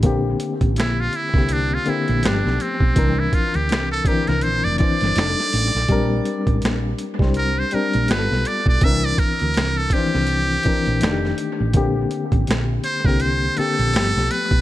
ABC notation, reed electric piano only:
X:1
M:4/4
L:1/16
Q:"Swing 16ths" 1/4=82
K:Bblyd
V:1 name="Reed electric piano"
[D,B,CG]6 z [D,B,CG]2 z [D,B,CG]2 [F,A,=B,G]3 z | [E,CDB]4- [E,CDB] z [D,E,CDB]3 z [E,CDc]2 [G,D_EA]3 z | [G,CDB]6 z [G,CDc]2 z [G,CDB]2 [G,=B,FGA]3 z | [D,E,CDB]4- [D,E,CDB] z [_E,=E,CDc]3 z [E,CDB]2 [_E,A,D_G=G]3 z |
[D,B,CG]6 z [D,B,CG]2 z [D,B,CG]2 [F,A,=B,G]3 z |]